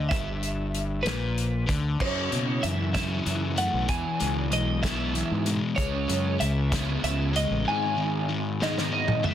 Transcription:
0.09 1.02 G1 medium
0.09 1.04 G2 loud
0.09 1.00 E5 loud
0.09 kick medium
0.09 closed hi-hat medium
0.43 closed hi-hat medium
0.74 closed hi-hat medium
1.03 1.65 A#1 medium
1.03 1.67 A#2 loud
1.03 1.71 B4 medium
1.03 closed hi-hat medium
1.07 snare loud
1.38 closed hi-hat medium
1.67 1.98 D2 medium
1.67 1.98 D3 medium
1.67 kick medium
1.67 closed hi-hat medium
2.00 3.58 F#2 medium
2.00 2.61 F#2 medium
2.00 2.28 F#2 medium
2.00 2.61 C#3 medium
2.00 2.62 F#3 medium
2.00 2.66 C#5 medium
2.00 kick medium
2.00 crash medium
2.31 2.60 B2 medium
2.31 3.87 C#3 medium
2.31 closed hi-hat medium
2.63 2.92 F#2 medium
2.63 3.19 F#2 medium
2.63 2.92 C#3 medium
2.63 3.25 E3 medium
2.63 2.93 E5 medium
2.63 closed hi-hat medium
2.94 3.56 F#2 medium
2.94 3.56 C#3 medium
2.94 3.56 F#3 medium
2.94 3.89 C#4 medium
2.94 3.58 E5 medium
2.94 kick medium
2.94 snare loud
2.94 closed hi-hat medium
3.25 3.68 F#2 medium
3.25 3.88 E3 medium
3.25 closed hi-hat medium
3.56 3.86 F#2 medium
3.56 3.86 C#3 medium
3.56 3.88 A3 medium
3.56 3.88 F#5 loud
3.56 closed hi-hat medium
3.74 3.87 B1 medium
3.88 4.50 E2 medium
3.88 4.03 E2 medium
3.88 4.50 B2 medium
3.88 4.50 E3 medium
3.88 4.53 G#5 loud
3.88 kick medium
3.88 closed hi-hat medium
4.19 4.53 C#2 medium
4.19 5.45 G#3 medium
4.19 closed hi-hat medium
4.51 5.22 B1 medium
4.51 4.80 E2 medium
4.51 4.80 B2 medium
4.51 5.13 E3 medium
4.51 4.82 D#5 medium
4.51 closed hi-hat medium
4.83 5.44 E2 medium
4.83 5.45 B2 medium
4.83 5.45 E3 medium
4.83 5.80 B3 medium
4.83 5.50 E5 medium
4.83 kick medium
4.83 snare medium
4.83 closed hi-hat medium
5.14 5.76 E3 medium
5.14 closed hi-hat medium
5.31 5.59 G#2 medium
5.46 5.75 E2 medium
5.46 5.75 B2 medium
5.46 6.08 G#3 medium
5.46 closed hi-hat medium
5.76 6.06 C#2 medium
5.76 6.38 C#3 medium
5.76 6.39 G#3 medium
5.76 6.39 C#4 loud
5.76 6.36 C#5 loud
5.76 kick medium
5.76 closed hi-hat medium
6.08 6.37 F#2 medium
6.08 7.33 G#3 medium
6.08 closed hi-hat medium
6.39 6.96 C#2 medium
6.39 7.01 C#3 medium
6.39 6.69 C#3 medium
6.39 6.69 G#3 medium
6.39 7.03 E5 medium
6.39 closed hi-hat medium
6.71 7.33 C#3 medium
6.71 7.33 G#3 medium
6.71 8.60 B3 medium
6.71 7.33 C#4 medium
6.71 kick medium
6.71 snare loud
6.71 closed hi-hat loud
7.02 7.45 C#2 loud
7.02 7.66 C#3 medium
7.02 7.36 E5 medium
7.02 closed hi-hat medium
7.33 7.63 C#3 medium
7.33 9.23 G#3 medium
7.33 7.64 G#3 medium
7.33 7.67 D#5 medium
7.33 closed hi-hat medium
7.51 7.65 A1 medium
7.65 9.23 G#2 medium
7.65 8.28 G#2 medium
7.65 8.28 D#3 loud
7.65 8.28 G#3 loud
7.65 9.21 G#5 medium
7.97 8.28 D#3 medium
8.29 8.58 G#2 medium
8.29 8.91 D#3 medium
8.29 8.58 D#3 medium
8.60 9.22 G#2 medium
8.60 9.23 D#3 loud
8.60 9.23 G#3 loud
8.60 9.34 B3 medium
8.60 8.92 D#5 medium
8.60 snare medium
8.78 snare medium
8.92 9.34 D#3 medium
8.92 9.25 D#5 medium
9.08 mid tom medium
9.23 9.34 G#2 medium
9.23 9.34 D#3 medium
9.23 9.34 G#3 medium
9.23 9.34 E5 loud
9.23 mid tom medium

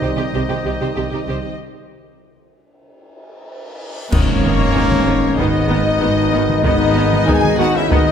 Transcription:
0.00 0.08 C2 medium
0.00 0.08 C3 medium
0.00 1.56 D#3 soft
0.00 1.60 G3 soft
0.00 1.56 C4 medium
0.00 1.59 C4 medium
0.00 1.55 D#4 medium
0.00 1.56 D#4 medium
0.00 1.59 G4 medium
0.00 0.09 G4 medium
0.00 0.08 C5 medium
0.00 1.56 D#5 medium
0.00 1.56 D#5 soft
0.17 0.24 C3 soft
0.17 0.23 G4 soft
0.17 0.24 G4 soft
0.33 0.40 C2 medium
0.33 0.40 C3 medium
0.33 0.40 G4 medium
0.33 0.40 C5 medium
0.49 0.55 C3 soft
0.49 0.55 G4 soft
0.49 0.56 G4 soft
0.65 0.72 C2 soft
0.65 0.71 C3 soft
0.65 0.72 D#4 soft
0.65 0.71 G4 soft
0.80 0.87 C3 medium
0.80 0.87 G4 soft
0.80 0.88 C5 medium
0.96 1.03 C2 soft
0.96 1.03 C3 soft
0.96 1.02 G4 soft
0.96 1.03 G4 soft
1.12 1.19 C3 soft
1.12 1.20 D#4 soft
1.12 1.19 G4 soft
1.28 1.35 C2 medium
1.28 1.35 C3 medium
1.28 1.34 G4 medium
1.28 1.36 C5 medium
1.60 reverse cymbal soft
4.12 4.68 G#1 medium
4.12 4.68 G#2 medium
4.12 8.12 B2 medium
4.12 4.21 D#3 medium
4.12 8.12 D#3 medium
4.12 8.12 G#3 medium
4.12 5.40 A#3 loud
4.12 4.21 B3 medium
4.12 5.35 C#4 loud
4.12 8.12 D#4 medium
4.12 8.12 G#4 medium
4.12 5.35 C#5 medium
4.12 8.12 D#5 medium
4.12 concert bass drum medium
4.12 taiko loud
4.12 crash medium
4.12 impact medium
4.43 4.52 D#3 medium
4.43 4.51 B3 medium
4.60 taiko mid medium
4.76 5.32 G#1 medium
4.76 5.31 G#2 medium
4.76 4.84 D#3 medium
4.76 4.84 B3 medium
4.76 taiko medium
4.92 taiko mid soft
5.06 5.14 D#3 medium
5.06 5.14 B3 medium
5.38 5.95 G#1 medium
5.38 5.95 G#2 medium
5.38 5.46 D#3 medium
5.38 5.46 B3 medium
5.38 6.64 B3 medium
5.38 6.65 D#4 medium
5.38 6.64 D#5 medium
5.38 6.63 D#5 medium
5.38 taiko medium
5.69 5.77 D#3 medium
5.69 5.78 B3 medium
6.01 6.58 G#1 medium
6.01 6.58 G#2 medium
6.01 6.09 D#3 medium
6.01 6.09 B3 medium
6.32 6.40 D#3 medium
6.32 6.41 B3 medium
6.49 taiko mid medium
6.64 7.21 G#1 medium
6.64 7.21 G#2 medium
6.64 6.72 D#3 medium
6.64 6.72 B3 medium
6.64 7.30 B3 loud
6.64 7.27 D#4 loud
6.64 7.27 D#5 medium
6.64 taiko loud
6.95 7.03 D#3 medium
6.95 7.04 B3 medium
7.13 taiko mid medium
7.27 7.84 G#1 medium
7.27 7.84 G#2 medium
7.27 7.35 D#3 medium
7.27 7.35 B3 medium
7.27 7.59 D#4 medium
7.27 7.59 G#4 loud
7.27 7.59 G#5 loud
7.27 7.60 G#5 medium
7.27 taiko medium
7.44 taiko mid soft
7.59 7.67 D#3 medium
7.59 7.67 B3 medium
7.59 7.77 D#4 medium
7.59 7.75 F#4 loud
7.59 7.76 F#5 medium
7.75 7.92 C#4 medium
7.75 7.92 E4 loud
7.75 7.91 E5 medium
7.75 7.92 E5 medium
7.91 8.12 G#1 medium
7.91 8.12 G#2 medium
7.91 7.99 D#3 medium
7.91 8.12 B3 medium
7.91 7.99 B3 medium
7.91 8.12 D#4 medium
7.91 8.12 D#5 medium
7.91 taiko medium

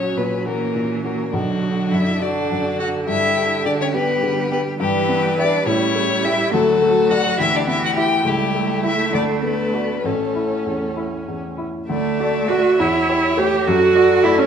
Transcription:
0.00 1.30 A#1 soft
0.00 0.47 F#3 soft
0.00 0.16 C#4 medium
0.00 1.30 C#4 medium
0.00 0.35 F#4 soft
0.00 0.19 C#5 medium
0.16 0.64 A#2 soft
0.16 0.24 B3 medium
0.16 0.47 B4 medium
0.45 1.33 E3 soft
0.45 1.03 A#3 medium
0.45 0.93 F#4 soft
0.45 1.04 A#4 medium
0.75 1.22 A#2 soft
1.05 1.35 A#3 medium
1.05 1.34 F#4 soft
1.05 1.37 A#4 medium
1.33 3.03 B1 soft
1.33 2.19 D3 medium
1.33 1.92 F#3 medium
1.33 2.21 D4 medium
1.33 1.95 F#4 medium
1.63 2.09 F#4 soft
1.91 2.38 F#2 soft
1.91 2.19 E4 medium
1.91 2.24 E5 medium
2.20 3.96 D3 medium
2.20 2.77 D4 medium
2.20 3.06 F#4 medium
2.20 2.67 F#4 medium
2.20 2.79 D5 medium
2.50 2.96 F#2 soft
2.79 2.87 F#4 medium
2.79 3.08 F#4 soft
2.79 2.88 F#5 medium
3.06 4.76 G2 medium
3.06 3.64 E4 medium
3.06 4.76 G4 medium
3.06 3.65 E5 medium
3.36 3.83 G4 soft
3.65 4.12 D3 soft
3.65 3.82 D4 medium
3.65 3.71 D5 medium
3.81 3.96 C#4 medium
3.81 3.87 C#5 medium
3.94 4.80 G3 medium
3.94 4.50 B3 medium
3.94 4.40 G4 medium
3.94 4.50 B4 medium
4.23 4.68 D3 soft
4.50 4.58 B3 medium
4.50 4.80 G4 medium
4.50 4.60 B4 medium
4.80 5.64 G2 medium
4.80 5.62 E3 medium
4.80 5.37 G3 medium
4.80 5.37 G4 loud
4.80 5.69 B4 medium
5.08 5.55 B3 medium
5.38 5.68 D4 medium
5.38 5.64 G4 medium
5.38 5.66 D5 medium
5.38 5.64 E5 medium
5.66 6.49 A2 medium
5.66 6.54 G3 medium
5.66 6.25 C#4 medium
5.66 6.51 E4 medium
5.66 6.26 C#5 loud
5.95 6.41 A3 medium
6.23 6.53 E4 medium
6.23 6.50 G4 medium
6.23 6.52 E5 medium
6.23 6.50 E5 medium
6.51 7.37 D2 medium
6.51 7.38 F#3 medium
6.51 7.11 A3 medium
6.51 7.41 F#4 medium
6.51 7.12 A4 medium
6.82 7.28 A3 medium
7.10 7.38 F#4 medium
7.10 7.36 F#4 soft
7.10 7.37 D5 medium
7.10 7.39 F#5 loud
7.38 8.23 D2 medium
7.38 8.26 E3 medium
7.38 7.44 E4 medium
7.38 8.25 G4 medium
7.38 7.58 E5 loud
7.54 7.66 D4 medium
7.54 7.69 D5 medium
7.67 8.13 B3 medium
7.67 7.81 E4 medium
7.67 7.82 E5 medium
7.81 7.96 F#4 medium
7.85 7.90 F#5 medium
7.96 8.22 E4 medium
7.96 8.04 G4 medium
7.96 8.23 E5 medium
7.96 8.29 G5 medium
8.25 9.10 C#2 medium
8.25 8.85 G3 medium
8.25 10.04 A3 medium
8.25 9.11 E4 medium
8.25 8.84 G4 medium
8.55 9.01 A3 soft
8.83 9.14 E4 medium
8.83 9.10 E4 soft
8.83 9.10 E5 soft
8.83 9.13 E5 medium
9.12 10.01 D2 medium
9.12 9.44 D4 medium
9.12 10.02 D4 medium
9.12 9.23 D5 medium
9.43 9.92 A3 soft
9.43 10.04 B3 medium
9.43 10.07 B4 medium
9.74 10.01 F#4 soft
9.74 10.01 D5 soft
10.04 11.84 A1 soft
10.04 10.94 A3 soft
10.04 11.65 C#4 soft
10.04 11.40 C#4 medium
10.04 10.97 A4 medium
10.35 10.84 E4 soft
10.65 11.15 E2 soft
10.96 11.46 E4 soft
11.28 11.77 E2 soft
11.58 11.88 E4 soft
11.89 12.18 D2 medium
11.89 12.50 A3 medium
11.89 12.75 D5 medium
11.89 13.69 E5 medium
12.20 12.46 F#4 soft
12.20 12.46 D5 soft
12.48 12.76 A3 soft
12.48 12.77 F#4 medium
12.48 12.81 F#4 medium
12.48 12.76 F#4 soft
12.48 12.76 D5 medium
12.78 13.08 E2 medium
12.78 13.40 E4 medium
12.78 13.65 C#5 medium
13.09 13.35 G4 medium
13.09 13.35 C#5 medium
13.37 13.63 A3 medium
13.37 13.64 G4 medium
13.37 13.66 G4 medium
13.37 13.69 G4 medium
13.37 13.64 C#5 medium
13.66 13.95 F#2 medium
13.66 14.25 F#4 medium
13.66 14.25 F#4 loud
13.66 14.46 A4 medium
13.66 14.46 D5 medium
13.95 14.20 F#4 medium
13.95 14.21 D5 medium
14.24 14.46 A3 medium
14.24 14.39 E4 medium
14.24 14.40 E4 loud
14.24 14.46 F#4 medium
14.24 14.46 D5 medium
14.37 14.46 C#4 medium

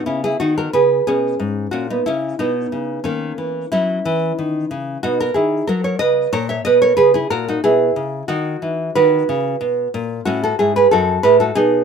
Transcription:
0.06 0.34 C#3 medium
0.06 0.23 C#4 medium
0.06 0.23 E4 medium
0.24 0.40 E4 medium
0.24 0.39 G#4 loud
0.40 0.67 D#3 medium
0.40 0.56 D#4 medium
0.40 0.57 F#4 medium
0.58 0.73 F#4 medium
0.58 0.73 A#4 medium
0.73 1.00 C#3 medium
0.73 1.05 G#4 medium
0.73 1.05 B4 loud
1.07 1.34 B2 medium
1.07 1.69 C#4 medium
1.07 1.70 G#4 medium
1.40 1.66 G#2 medium
1.71 1.99 A#2 medium
1.71 1.88 C#4 medium
1.71 1.88 F#4 medium
1.90 2.05 B3 medium
1.90 2.06 D#4 medium
2.06 2.33 C#3 medium
2.06 2.37 C#4 medium
2.06 2.37 E4 medium
2.39 2.66 B2 medium
2.39 3.02 B3 medium
2.39 3.02 D#4 medium
2.72 2.98 C#3 medium
3.04 3.31 D#3 medium
3.04 3.67 A#3 medium
3.04 3.68 C#4 medium
3.38 3.64 E3 medium
3.72 3.98 F#3 medium
3.72 5.00 C#4 medium
3.72 4.99 E4 loud
4.05 4.31 E3 medium
4.39 4.64 D#3 medium
4.71 4.97 C#3 medium
5.03 5.29 B2 medium
5.03 5.18 D#4 medium
5.03 5.19 F#4 loud
5.20 5.34 F#4 medium
5.20 5.36 A#4 medium
5.34 5.61 D#3 medium
5.34 5.65 E4 medium
5.34 5.66 G#4 medium
5.67 5.94 F#3 medium
5.67 5.83 F#4 medium
5.67 5.84 A#4 loud
5.84 6.00 A#4 medium
5.84 5.99 C#5 medium
5.99 6.26 C#3 medium
5.99 6.31 B4 medium
5.99 6.31 D#5 loud
6.33 6.59 A#2 medium
6.33 6.48 A#4 medium
6.33 6.49 C#5 loud
6.49 6.65 C#5 medium
6.49 6.64 E5 medium
6.65 6.92 B2 medium
6.65 6.81 B4 medium
6.65 6.81 D#5 loud
6.82 6.97 A#4 medium
6.82 6.96 C#5 loud
6.97 7.24 C#3 medium
6.97 7.13 G#4 medium
6.97 7.14 B4 loud
7.14 7.30 E4 medium
7.14 7.31 G#4 loud
7.30 7.57 A#2 medium
7.30 7.46 F#4 medium
7.30 7.47 A#4 loud
7.48 7.63 D#4 medium
7.48 7.63 F#4 medium
7.64 7.90 B2 medium
7.64 8.25 E4 medium
7.64 8.26 G#4 loud
7.96 8.22 C#3 medium
8.28 8.55 D#3 medium
8.28 8.92 D#4 medium
8.28 8.93 F#4 loud
8.62 8.89 E3 medium
8.95 9.22 D#3 medium
8.95 10.23 F#4 medium
8.95 10.22 B4 loud
9.29 9.55 C#3 medium
9.61 9.87 B2 medium
9.94 10.20 A#2 medium
10.25 10.52 A2 medium
10.25 10.42 C#4 medium
10.25 10.42 F#4 loud
10.43 10.58 F#4 medium
10.43 10.59 A4 loud
10.59 10.84 G#2 medium
10.59 10.74 E4 medium
10.59 10.75 G#4 medium
10.76 10.91 G#4 medium
10.76 10.91 B4 loud
10.91 11.17 F#2 medium
10.91 11.22 F#4 medium
10.91 11.22 A4 loud
11.23 11.50 A2 medium
11.23 11.39 G#4 medium
11.23 11.39 B4 loud
11.40 11.55 F#4 medium
11.40 11.56 A4 medium
11.55 11.82 B2 medium
11.55 11.84 D#4 medium
11.55 11.84 G#4 loud

